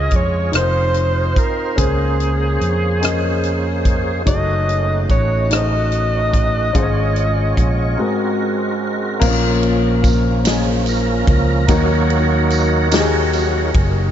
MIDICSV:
0, 0, Header, 1, 6, 480
1, 0, Start_track
1, 0, Tempo, 825309
1, 1037, Time_signature, 6, 3, 24, 8
1, 8209, End_track
2, 0, Start_track
2, 0, Title_t, "Alto saxophone"
2, 0, Program_c, 0, 65
2, 0, Note_on_c, 0, 75, 87
2, 92, Note_on_c, 0, 73, 77
2, 100, Note_off_c, 0, 75, 0
2, 323, Note_off_c, 0, 73, 0
2, 329, Note_on_c, 0, 72, 87
2, 808, Note_on_c, 0, 70, 66
2, 817, Note_off_c, 0, 72, 0
2, 1038, Note_on_c, 0, 68, 64
2, 1047, Note_off_c, 0, 70, 0
2, 2241, Note_off_c, 0, 68, 0
2, 2487, Note_on_c, 0, 75, 90
2, 2942, Note_off_c, 0, 75, 0
2, 2973, Note_on_c, 0, 73, 79
2, 3213, Note_on_c, 0, 75, 97
2, 3221, Note_off_c, 0, 73, 0
2, 4887, Note_off_c, 0, 75, 0
2, 8209, End_track
3, 0, Start_track
3, 0, Title_t, "Upright piano"
3, 0, Program_c, 1, 0
3, 0, Control_c, 1, 64, 127
3, 0, Note_on_c, 1, 49, 47
3, 0, Note_on_c, 1, 61, 60
3, 0, Note_on_c, 1, 65, 56
3, 0, Note_on_c, 1, 68, 53
3, 0, Note_on_c, 1, 72, 65
3, 139, Note_off_c, 1, 61, 0
3, 142, Note_off_c, 1, 65, 0
3, 144, Note_off_c, 1, 68, 0
3, 167, Note_off_c, 1, 72, 0
3, 289, Note_off_c, 1, 49, 0
3, 298, Note_on_c, 1, 63, 51
3, 303, Note_on_c, 1, 65, 47
3, 307, Note_on_c, 1, 69, 41
3, 315, Note_on_c, 1, 70, 47
3, 320, Control_c, 1, 64, 0
3, 351, Note_on_c, 1, 72, 58
3, 352, Note_off_c, 1, 70, 0
3, 425, Control_c, 1, 64, 127
3, 861, Note_off_c, 1, 63, 0
3, 863, Note_off_c, 1, 65, 0
3, 866, Note_off_c, 1, 69, 0
3, 887, Note_off_c, 1, 72, 0
3, 1022, Note_on_c, 1, 61, 60
3, 1030, Note_on_c, 1, 68, 60
3, 1032, Note_on_c, 1, 49, 45
3, 1034, Note_on_c, 1, 70, 56
3, 1039, Note_on_c, 1, 72, 70
3, 1044, Control_c, 1, 64, 0
3, 1132, Control_c, 1, 64, 127
3, 1584, Note_off_c, 1, 61, 0
3, 1588, Note_off_c, 1, 68, 0
3, 1590, Note_off_c, 1, 70, 0
3, 1593, Note_off_c, 1, 72, 0
3, 1734, Note_off_c, 1, 49, 0
3, 1750, Note_on_c, 1, 61, 59
3, 1757, Note_on_c, 1, 68, 58
3, 1764, Note_on_c, 1, 70, 54
3, 1767, Note_on_c, 1, 75, 65
3, 2309, Note_off_c, 1, 61, 0
3, 2312, Note_off_c, 1, 68, 0
3, 2316, Note_off_c, 1, 70, 0
3, 2317, Note_off_c, 1, 75, 0
3, 2475, Note_on_c, 1, 63, 67
3, 2481, Note_on_c, 1, 66, 59
3, 2488, Control_c, 1, 64, 0
3, 2488, Note_on_c, 1, 68, 44
3, 2494, Note_on_c, 1, 73, 69
3, 2522, Note_off_c, 1, 68, 0
3, 2526, Note_on_c, 1, 69, 60
3, 2591, Control_c, 1, 64, 127
3, 3031, Note_off_c, 1, 63, 0
3, 3035, Note_off_c, 1, 66, 0
3, 3041, Note_off_c, 1, 73, 0
3, 3057, Note_off_c, 1, 69, 0
3, 3198, Note_on_c, 1, 63, 58
3, 3205, Note_on_c, 1, 66, 48
3, 3213, Note_on_c, 1, 68, 39
3, 3216, Note_on_c, 1, 72, 50
3, 3245, Note_off_c, 1, 68, 0
3, 3248, Note_on_c, 1, 69, 49
3, 3753, Note_off_c, 1, 63, 0
3, 3757, Note_off_c, 1, 66, 0
3, 3762, Note_off_c, 1, 72, 0
3, 3778, Note_off_c, 1, 69, 0
3, 3914, Note_on_c, 1, 61, 72
3, 3921, Note_on_c, 1, 65, 74
3, 3923, Note_on_c, 1, 44, 66
3, 3929, Note_on_c, 1, 68, 65
3, 3931, Control_c, 1, 64, 0
3, 3936, Note_on_c, 1, 72, 76
3, 3967, Note_off_c, 1, 72, 0
3, 3968, Note_on_c, 1, 73, 86
3, 4030, Control_c, 1, 64, 127
3, 4471, Note_off_c, 1, 61, 0
3, 4474, Note_off_c, 1, 65, 0
3, 4478, Note_off_c, 1, 68, 0
3, 4498, Note_off_c, 1, 73, 0
3, 4620, Note_off_c, 1, 44, 0
3, 4634, Note_on_c, 1, 60, 57
3, 4642, Note_on_c, 1, 66, 56
3, 4647, Note_on_c, 1, 44, 61
3, 4647, Note_on_c, 1, 68, 55
3, 4651, Note_on_c, 1, 70, 69
3, 4652, Control_c, 1, 64, 0
3, 4742, Control_c, 1, 64, 127
3, 5190, Note_off_c, 1, 60, 0
3, 5194, Note_off_c, 1, 66, 0
3, 5197, Note_off_c, 1, 68, 0
3, 5199, Note_off_c, 1, 70, 0
3, 5340, Note_off_c, 1, 44, 0
3, 5348, Note_on_c, 1, 58, 91
3, 5353, Note_on_c, 1, 60, 68
3, 5356, Note_on_c, 1, 46, 78
3, 5363, Note_on_c, 1, 65, 84
3, 5367, Note_on_c, 1, 70, 96
3, 5369, Control_c, 1, 64, 0
3, 5392, Note_on_c, 1, 61, 85
3, 5394, Note_off_c, 1, 60, 0
3, 5485, Control_c, 1, 64, 127
3, 5906, Note_off_c, 1, 58, 0
3, 5913, Note_off_c, 1, 65, 0
3, 5916, Note_off_c, 1, 70, 0
3, 5928, Note_off_c, 1, 61, 0
3, 6054, Note_off_c, 1, 46, 0
3, 6069, Note_on_c, 1, 58, 54
3, 6075, Note_on_c, 1, 61, 54
3, 6081, Note_on_c, 1, 65, 55
3, 6088, Note_on_c, 1, 68, 63
3, 6625, Note_off_c, 1, 58, 0
3, 6629, Note_off_c, 1, 61, 0
3, 6632, Note_off_c, 1, 65, 0
3, 6635, Note_off_c, 1, 68, 0
3, 6787, Note_on_c, 1, 58, 77
3, 6796, Note_on_c, 1, 63, 76
3, 6798, Note_on_c, 1, 51, 63
3, 6800, Note_on_c, 1, 66, 71
3, 6805, Note_on_c, 1, 70, 85
3, 6806, Control_c, 1, 64, 0
3, 6892, Control_c, 1, 64, 127
3, 7343, Note_off_c, 1, 58, 0
3, 7347, Note_off_c, 1, 63, 0
3, 7350, Note_off_c, 1, 66, 0
3, 7352, Note_off_c, 1, 70, 0
3, 7492, Note_off_c, 1, 51, 0
3, 7506, Note_on_c, 1, 58, 72
3, 7511, Note_on_c, 1, 63, 74
3, 7518, Note_on_c, 1, 66, 68
3, 7526, Note_on_c, 1, 67, 72
3, 7558, Note_off_c, 1, 67, 0
3, 7560, Note_on_c, 1, 68, 82
3, 8062, Note_off_c, 1, 58, 0
3, 8064, Note_off_c, 1, 63, 0
3, 8068, Note_off_c, 1, 66, 0
3, 8088, Note_off_c, 1, 68, 0
3, 8209, End_track
4, 0, Start_track
4, 0, Title_t, "Tonewheel organ"
4, 0, Program_c, 2, 16
4, 0, Note_on_c, 2, 56, 50
4, 0, Note_on_c, 2, 61, 48
4, 0, Note_on_c, 2, 65, 48
4, 0, Note_on_c, 2, 68, 53
4, 310, Note_off_c, 2, 65, 0
4, 312, Note_off_c, 2, 61, 0
4, 313, Note_off_c, 2, 68, 0
4, 314, Note_on_c, 2, 60, 48
4, 315, Note_off_c, 2, 56, 0
4, 317, Note_on_c, 2, 65, 44
4, 318, Note_on_c, 2, 72, 55
4, 319, Note_on_c, 2, 63, 42
4, 1028, Note_off_c, 2, 72, 0
4, 1033, Note_on_c, 2, 68, 50
4, 1034, Note_on_c, 2, 61, 47
4, 1035, Note_on_c, 2, 72, 64
4, 1036, Note_on_c, 2, 58, 51
4, 1037, Note_off_c, 2, 60, 0
4, 1039, Note_off_c, 2, 65, 0
4, 1040, Note_off_c, 2, 63, 0
4, 2456, Note_off_c, 2, 68, 0
4, 2457, Note_off_c, 2, 61, 0
4, 2457, Note_off_c, 2, 72, 0
4, 2458, Note_off_c, 2, 58, 0
4, 2486, Note_on_c, 2, 66, 51
4, 2489, Note_on_c, 2, 63, 52
4, 2491, Note_on_c, 2, 57, 52
4, 2492, Note_on_c, 2, 61, 58
4, 3902, Note_off_c, 2, 66, 0
4, 3904, Note_off_c, 2, 57, 0
4, 3904, Note_off_c, 2, 63, 0
4, 3905, Note_off_c, 2, 61, 0
4, 3921, Note_on_c, 2, 73, 75
4, 3924, Note_on_c, 2, 56, 66
4, 3924, Note_on_c, 2, 61, 61
4, 3928, Note_on_c, 2, 64, 46
4, 3963, Note_off_c, 2, 64, 0
4, 3963, Note_on_c, 2, 65, 61
4, 4640, Note_off_c, 2, 56, 0
4, 4642, Note_off_c, 2, 73, 0
4, 4643, Note_off_c, 2, 61, 0
4, 4645, Note_on_c, 2, 66, 58
4, 4647, Note_on_c, 2, 56, 60
4, 4649, Note_on_c, 2, 70, 59
4, 4652, Note_on_c, 2, 60, 50
4, 4663, Note_off_c, 2, 65, 0
4, 5359, Note_on_c, 2, 53, 49
4, 5363, Note_off_c, 2, 66, 0
4, 5364, Note_off_c, 2, 56, 0
4, 5365, Note_off_c, 2, 70, 0
4, 5366, Note_off_c, 2, 60, 0
4, 5370, Note_on_c, 2, 58, 50
4, 5370, Note_on_c, 2, 61, 57
4, 6096, Note_on_c, 2, 68, 72
4, 6200, Note_off_c, 2, 68, 0
4, 6333, Note_on_c, 2, 70, 80
4, 6549, Note_off_c, 2, 70, 0
4, 6556, Note_off_c, 2, 53, 0
4, 6558, Note_off_c, 2, 58, 0
4, 6561, Note_off_c, 2, 61, 0
4, 6563, Note_on_c, 2, 53, 46
4, 6565, Note_on_c, 2, 58, 49
4, 6568, Note_on_c, 2, 61, 55
4, 6575, Note_on_c, 2, 70, 88
4, 6777, Note_off_c, 2, 53, 0
4, 6778, Note_off_c, 2, 58, 0
4, 6780, Note_off_c, 2, 61, 0
4, 6795, Note_on_c, 2, 54, 54
4, 6800, Note_off_c, 2, 70, 0
4, 6800, Note_on_c, 2, 58, 51
4, 6803, Note_on_c, 2, 66, 72
4, 6804, Note_on_c, 2, 73, 93
4, 6806, Note_on_c, 2, 63, 63
4, 6807, Note_on_c, 2, 70, 72
4, 7491, Note_off_c, 2, 54, 0
4, 7493, Note_off_c, 2, 58, 0
4, 7496, Note_off_c, 2, 63, 0
4, 7758, Note_on_c, 2, 54, 52
4, 7763, Note_on_c, 2, 58, 49
4, 7763, Note_on_c, 2, 63, 53
4, 7972, Note_off_c, 2, 54, 0
4, 7973, Note_off_c, 2, 66, 0
4, 7974, Note_off_c, 2, 73, 0
4, 7975, Note_off_c, 2, 58, 0
4, 7975, Note_off_c, 2, 63, 0
4, 7975, Note_off_c, 2, 70, 0
4, 8209, End_track
5, 0, Start_track
5, 0, Title_t, "Fingered electric bass"
5, 0, Program_c, 3, 33
5, 67, Note_on_c, 3, 41, 63
5, 291, Note_off_c, 3, 41, 0
5, 310, Note_on_c, 3, 29, 74
5, 771, Note_off_c, 3, 29, 0
5, 1034, Note_on_c, 3, 37, 84
5, 1494, Note_off_c, 3, 37, 0
5, 1515, Note_on_c, 3, 41, 64
5, 2456, Note_off_c, 3, 41, 0
5, 2482, Note_on_c, 3, 30, 89
5, 2939, Note_off_c, 3, 30, 0
5, 2963, Note_on_c, 3, 33, 69
5, 3900, Note_off_c, 3, 33, 0
5, 3924, Note_on_c, 3, 32, 89
5, 4380, Note_off_c, 3, 32, 0
5, 4404, Note_on_c, 3, 34, 60
5, 4624, Note_off_c, 3, 34, 0
5, 5360, Note_on_c, 3, 34, 96
5, 6535, Note_off_c, 3, 34, 0
5, 6557, Note_on_c, 3, 37, 86
5, 6778, Note_off_c, 3, 37, 0
5, 6795, Note_on_c, 3, 39, 106
5, 7969, Note_off_c, 3, 39, 0
5, 7992, Note_on_c, 3, 30, 85
5, 8209, Note_off_c, 3, 30, 0
5, 8209, End_track
6, 0, Start_track
6, 0, Title_t, "Drums"
6, 62, Note_on_c, 9, 42, 41
6, 68, Note_on_c, 9, 36, 66
6, 120, Note_off_c, 9, 42, 0
6, 126, Note_off_c, 9, 36, 0
6, 309, Note_on_c, 9, 42, 75
6, 322, Note_on_c, 9, 37, 94
6, 367, Note_off_c, 9, 42, 0
6, 380, Note_off_c, 9, 37, 0
6, 548, Note_on_c, 9, 42, 38
6, 606, Note_off_c, 9, 42, 0
6, 794, Note_on_c, 9, 36, 80
6, 796, Note_on_c, 9, 42, 44
6, 852, Note_off_c, 9, 36, 0
6, 854, Note_off_c, 9, 42, 0
6, 1035, Note_on_c, 9, 36, 101
6, 1035, Note_on_c, 9, 42, 78
6, 1093, Note_off_c, 9, 42, 0
6, 1094, Note_off_c, 9, 36, 0
6, 1279, Note_on_c, 9, 42, 40
6, 1338, Note_off_c, 9, 42, 0
6, 1519, Note_on_c, 9, 42, 40
6, 1577, Note_off_c, 9, 42, 0
6, 1759, Note_on_c, 9, 42, 72
6, 1773, Note_on_c, 9, 37, 96
6, 1818, Note_off_c, 9, 42, 0
6, 1831, Note_off_c, 9, 37, 0
6, 1998, Note_on_c, 9, 42, 40
6, 2056, Note_off_c, 9, 42, 0
6, 2241, Note_on_c, 9, 36, 74
6, 2241, Note_on_c, 9, 42, 45
6, 2299, Note_off_c, 9, 36, 0
6, 2299, Note_off_c, 9, 42, 0
6, 2481, Note_on_c, 9, 42, 72
6, 2482, Note_on_c, 9, 36, 96
6, 2539, Note_off_c, 9, 42, 0
6, 2540, Note_off_c, 9, 36, 0
6, 2727, Note_on_c, 9, 42, 41
6, 2785, Note_off_c, 9, 42, 0
6, 2964, Note_on_c, 9, 36, 69
6, 2964, Note_on_c, 9, 42, 38
6, 3022, Note_off_c, 9, 36, 0
6, 3023, Note_off_c, 9, 42, 0
6, 3203, Note_on_c, 9, 42, 69
6, 3216, Note_on_c, 9, 37, 99
6, 3261, Note_off_c, 9, 42, 0
6, 3274, Note_off_c, 9, 37, 0
6, 3441, Note_on_c, 9, 42, 41
6, 3499, Note_off_c, 9, 42, 0
6, 3685, Note_on_c, 9, 36, 69
6, 3685, Note_on_c, 9, 42, 45
6, 3743, Note_off_c, 9, 36, 0
6, 3743, Note_off_c, 9, 42, 0
6, 3925, Note_on_c, 9, 36, 96
6, 3925, Note_on_c, 9, 42, 68
6, 3983, Note_off_c, 9, 36, 0
6, 3983, Note_off_c, 9, 42, 0
6, 4164, Note_on_c, 9, 42, 38
6, 4222, Note_off_c, 9, 42, 0
6, 4405, Note_on_c, 9, 36, 68
6, 4406, Note_on_c, 9, 42, 45
6, 4463, Note_off_c, 9, 36, 0
6, 4464, Note_off_c, 9, 42, 0
6, 5359, Note_on_c, 9, 49, 95
6, 5361, Note_on_c, 9, 36, 99
6, 5362, Note_on_c, 9, 54, 53
6, 5417, Note_off_c, 9, 49, 0
6, 5419, Note_off_c, 9, 36, 0
6, 5420, Note_off_c, 9, 54, 0
6, 5600, Note_on_c, 9, 51, 38
6, 5658, Note_off_c, 9, 51, 0
6, 5839, Note_on_c, 9, 36, 86
6, 5840, Note_on_c, 9, 51, 45
6, 5842, Note_on_c, 9, 54, 49
6, 5897, Note_off_c, 9, 36, 0
6, 5898, Note_off_c, 9, 51, 0
6, 5900, Note_off_c, 9, 54, 0
6, 6077, Note_on_c, 9, 51, 83
6, 6079, Note_on_c, 9, 54, 83
6, 6090, Note_on_c, 9, 38, 120
6, 6135, Note_off_c, 9, 51, 0
6, 6137, Note_off_c, 9, 54, 0
6, 6148, Note_off_c, 9, 38, 0
6, 6316, Note_on_c, 9, 51, 36
6, 6322, Note_on_c, 9, 54, 57
6, 6374, Note_off_c, 9, 51, 0
6, 6380, Note_off_c, 9, 54, 0
6, 6557, Note_on_c, 9, 36, 95
6, 6560, Note_on_c, 9, 51, 44
6, 6615, Note_off_c, 9, 36, 0
6, 6618, Note_off_c, 9, 51, 0
6, 6795, Note_on_c, 9, 54, 48
6, 6796, Note_on_c, 9, 51, 81
6, 6797, Note_on_c, 9, 36, 116
6, 6853, Note_off_c, 9, 54, 0
6, 6854, Note_off_c, 9, 51, 0
6, 6855, Note_off_c, 9, 36, 0
6, 7038, Note_on_c, 9, 51, 43
6, 7096, Note_off_c, 9, 51, 0
6, 7272, Note_on_c, 9, 51, 40
6, 7278, Note_on_c, 9, 54, 52
6, 7330, Note_off_c, 9, 51, 0
6, 7336, Note_off_c, 9, 54, 0
6, 7512, Note_on_c, 9, 51, 82
6, 7512, Note_on_c, 9, 54, 73
6, 7526, Note_on_c, 9, 38, 107
6, 7570, Note_off_c, 9, 54, 0
6, 7571, Note_off_c, 9, 51, 0
6, 7584, Note_off_c, 9, 38, 0
6, 7754, Note_on_c, 9, 51, 44
6, 7758, Note_on_c, 9, 54, 55
6, 7812, Note_off_c, 9, 51, 0
6, 7816, Note_off_c, 9, 54, 0
6, 7994, Note_on_c, 9, 36, 93
6, 7996, Note_on_c, 9, 51, 47
6, 8052, Note_off_c, 9, 36, 0
6, 8055, Note_off_c, 9, 51, 0
6, 8209, End_track
0, 0, End_of_file